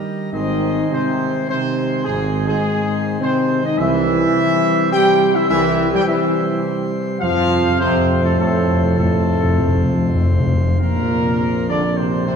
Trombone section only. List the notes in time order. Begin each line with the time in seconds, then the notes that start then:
0.33 D#3
0.91 C3
1.51 C3
2.07 G#2
2.50 G#2
3.21 C3
3.63 D#3
3.77 E3
4.93 G3
5.37 E3
5.50 E3
5.95 G3
6.09 E3
7.21 F3
7.81 C3
8.23 A2
8.38 A2
8.98 A2
10.81 A#2
11.68 D3
11.96 C3
12.27 C3